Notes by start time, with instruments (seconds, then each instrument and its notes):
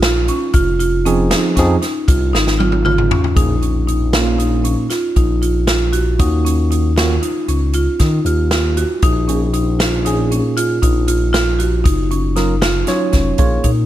Already playing: analog synth bass A#1
0.03 marimba F4, snare, closed hi-hat
0.28 marimba C#4, closed hi-hat
0.54 analog synth bass F1, marimba F4, kick, closed hi-hat
0.80 marimba F4, closed hi-hat
1.05 tine electric piano F3 C4 D#4 G#4, marimba C#4, closed hi-hat
1.31 marimba D#4, snare, closed hi-hat
1.56 analog synth bass F2, tine electric piano F3 C4 D#4 G#4, marimba C#4, kick, snare, closed hi-hat
1.82 marimba D#4, snare, closed hi-hat
2.08 analog synth bass C2, marimba F4, kick, closed hi-hat
2.33 analog synth bass G#1, marimba D#4, snare
2.47 snare
2.59 marimba F4, high tom
2.72 high tom
2.85 marimba F4, mid tom
2.98 mid tom
3.11 marimba C#4, floor tom
3.24 floor tom
3.36 analog synth bass A#1, tine electric piano A#2 A#3 C#4 G#4, marimba D#4, kick, closed hi-hat
3.62 marimba C#4, closed hi-hat
3.87 marimba D#4, closed hi-hat
4.13 tine electric piano A#2 A#3 C#4 F4, marimba F4, snare, closed hi-hat
4.38 marimba D#4, closed hi-hat
4.64 marimba C#4, closed hi-hat
4.90 marimba F4, snare, closed hi-hat
5.16 analog synth bass A#1, marimba D#4, kick, closed hi-hat
5.42 marimba F4, closed hi-hat
5.67 marimba F4, snare, closed hi-hat
5.93 marimba F#4, closed hi-hat
6.19 analog synth bass D#2, tine electric piano D#3 A#3 C#4 F#4, marimba D#4, kick, closed hi-hat
6.45 marimba C#4, closed hi-hat
6.71 marimba D#4, closed hi-hat
6.96 tine electric piano D#3 A#3 C#4 F#4, marimba F4, snare, closed hi-hat
7.22 marimba D#4, closed hi-hat
7.48 analog synth bass C#2, marimba C#4, closed hi-hat
7.74 marimba F4, closed hi-hat
8.00 analog synth bass D#3, marimba D#4, kick, snare, closed hi-hat
8.25 analog synth bass D#2, marimba F4, closed hi-hat
8.51 marimba F4, snare, closed hi-hat
8.77 marimba F#4, closed hi-hat
9.02 analog synth bass A#1, marimba D#4, kick, closed hi-hat
9.28 tine electric piano A#2 A#3 C#4 G#4, marimba C#4, closed hi-hat
9.54 marimba D#4, closed hi-hat
9.80 marimba F4, snare, closed hi-hat
10.05 tine electric piano A#2 A#3 C#4 G#4, marimba D#4, closed hi-hat
10.31 marimba C#4, closed hi-hat
10.57 marimba F4, closed hi-hat
10.82 analog synth bass A#1, marimba D#4, kick, closed hi-hat
11.08 marimba F4, closed hi-hat
11.33 marimba F4, snare, closed hi-hat
11.59 marimba F#4, closed hi-hat
11.84 analog synth bass F#1, marimba D#4, kick, closed hi-hat
12.11 marimba C#4, closed hi-hat
12.36 tine electric piano F#3 C#4 F4 A#4, marimba D#4, snare, closed hi-hat
12.62 marimba F4, snare, closed hi-hat
12.87 tine electric piano F#3 C#4 F4 C#5, marimba D#4, snare, closed hi-hat
13.12 analog synth bass F1, marimba C#4, kick, snare, closed hi-hat
13.38 analog synth bass A#1, tine electric piano A#3 F4 G#4 C#5, marimba F4, kick, closed hi-hat
13.64 analog synth bass A#2, marimba D#4, kick, closed hi-hat